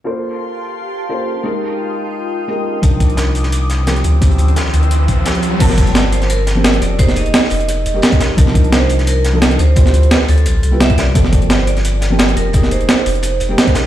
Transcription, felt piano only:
X:1
M:4/4
L:1/16
Q:"Swing 16ths" 1/4=173
K:Gm
V:1 name="Felt piano"
[B,FAc]12 [B,FAc]4 | [_A,EGB]12 [A,EGB]4 | [F,DEB]12 [F,C=EG]4 | [F,C=EG]12 [F,CEG]4 |
[F,B,Ca]8- [F,B,Ca]3 [F,B,CG]4- [F,B,CG] | [B,EG_A]8- [B,EGA]3 [G,B,EG]4- [G,B,EG] | [F,DEB]8- [F,DEB]3 [F,DEA]3 z2 | [G,=EFc]8- [G,EFc]3 [G,EF=B]4- [G,EFB] |
[F,B,CA]8- [F,B,CA]3 [F,B,CG]4- [F,B,CG] | [B,EG_A]8- [B,EGA]3 [G,B,EG]4- [G,B,EG] |]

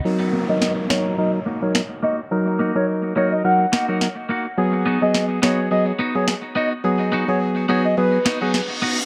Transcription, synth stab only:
X:1
M:4/4
L:1/16
Q:"Swing 16ths" 1/4=106
K:Ebm
V:1 name="Synth stab"
[G,EB]3 [G,EB]3 [G,EB]2 [G,EB] z2 [G,EB] z4 | [G,EB]3 [G,EB]3 [G,EB]2 [G,EB] z2 [G,EB] z4 | [G,CA]3 [G,CA]3 [G,CA]2 [G,CA] z2 [G,CA] z4 | [G,CA]3 [G,CA]3 [G,CA]2 [G,CA] z2 [G,CA] z4 |]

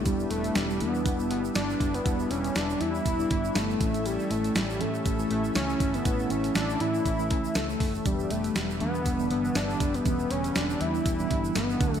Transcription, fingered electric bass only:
X:1
M:4/4
L:1/8
Q:"Swing 16ths" 1/4=120
K:Edor
V:1 name="Fingered electric bass" clef=bass
E,,, E,,, E,,, E,, E,,, G,,, G,,, F,,, | E,,, E,,, E,,, E,, E,,, G,,, G,,, A,,,- | A,,, A,,, A,,, A,, A,,, A,,, C,, G,,, | A,,, A,,, A,,, A,, A,,, C,, C,, F,,, |
E,,, E,,, E,,, E,, E,,, G,,, G,,, F,,, | E,,, E,,, E,,, E,, E,,, G,,, G,,, D,, |]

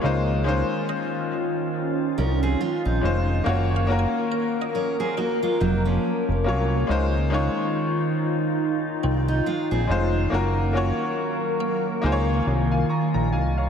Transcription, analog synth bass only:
X:1
M:4/4
L:1/16
Q:"Swing 16ths" 1/4=70
K:Db
V:1 name="Analog synth bass" clef=bass
D,,3 z6 z C,,2 z B,,, F,,,2 | G,,,3 z6 z F,,,2 z F,,, C,,2 | D,,3 z6 z C,,2 z B,,, F,,,2 | G,,,3 z4 z D,,2 C,,2 z B,,, C,,2 |]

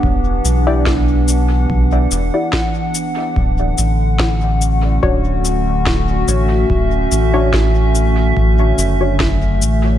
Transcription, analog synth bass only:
X:1
M:4/4
L:1/8
Q:"Swing 16ths" 1/4=72
K:D
V:1 name="Analog synth bass" clef=bass
E,,, B,,,3 B,,, E,,, z2 | D,,, A,,,3 D,,,3 A,,, | D,,, A,,,3 A,,, F,,,2 A,,, |]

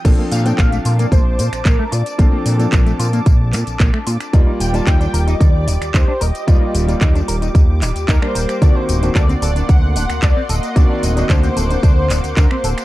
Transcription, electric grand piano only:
X:1
M:4/4
L:1/16
Q:1/4=112
K:Bb
V:1 name="Electric grand piano"
[F,CDA]3 [F,CDA]12- [F,CDA] | [F,CDA]3 [F,CDA]12- [F,CDA] | [G,B,Fd]3 [G,B,Fd]12- [G,B,Fd] | [G,B,Fd]3 [G,B,Fd]8- [G,B,Fd]2 [G,B,Bd]3 |
[E,B,C^F]3 [E,B,CF]12- [E,B,CF] | [E,B,C^F]3 [E,B,CF]12- [E,B,CF] |]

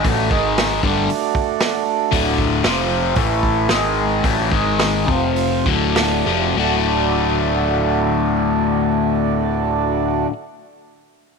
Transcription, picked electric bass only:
X:1
M:4/4
L:1/8
Q:1/4=105
K:Dmix
V:1 name="Picked electric bass" clef=bass
A,,, ^G,,,2 =G,,, z4 | D,,,2 =F,,,2 A,,,2 ^G,,,2 | A,,, ^G,,,2 =F,,,2 D,,,2 F,,, | D,,,8- |
D,,,8 |]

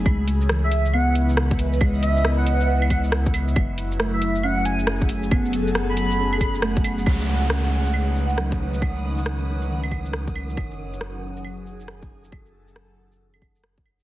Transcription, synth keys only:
X:1
M:4/4
L:1/8
Q:"Swing 16ths" 1/4=137
K:C#m
V:1 name="Synth keys"
[G,A,D]2 E,2 B,4 | G,2 B,6 | z2 A,2 C4 | B,4 C2 A,2- |
A, z C4 F,2- | F,4 D,4- | D, z6 z | z8 |]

